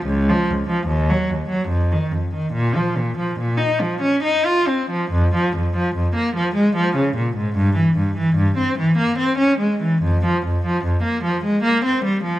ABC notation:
X:1
M:3/4
L:1/16
Q:1/4=73
K:Bbm
V:1 name="Cello" clef=bass
D,, F, D,, F, E,, G, E,, G, F,, E, F,, E, | B,, F, B,, F, B,, E F, D E F C F, | [K:Fm] F,, F, F,, F, F,, B, F, A, F, D, B,, A,, | G,, =E, G,, E, G,, C E, B, C D A, E, |
F,, F, F,, F, F,, B, F, A, B, C G, F, |]